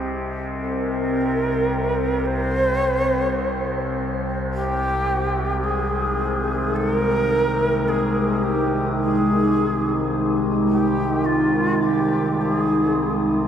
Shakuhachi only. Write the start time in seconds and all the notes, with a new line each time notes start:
0.60 A#4
2.25 C5
4.53 G4
5.63 G#4
6.76 A4
6.94 A#4
7.88 G#4
8.43 G4
9.00 G#4
10.67 G4
11.25 F4
11.83 G4
12.41 G4
12.55 G#4